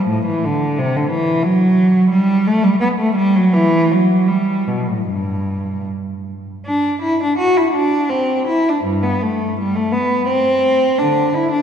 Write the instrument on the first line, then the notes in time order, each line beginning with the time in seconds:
cello
0.08 A2
0.26 E3
0.44 D3
0.79 C3
0.97 D3
1.11 E3
1.43 F#3
2.11 G3
2.47 A3
2.64 G3
2.81 B3
2.99 A3
3.16 G3
3.36 F#3
3.53 E3
3.91 F#3
4.28 G3
4.67 B2
4.89 A2
5.07 G2
6.66 D4
7.02 E4
7.23 D4
7.38 F#4
7.57 E4
7.73 D4
8.10 C4
8.48 E4
8.69 D4
8.85 G2
9.03 B3
9.23 A3
9.60 G3
9.75 A3
9.92 B3
10.28 C4
10.99 D3 D4
11.34 E4
11.52 D4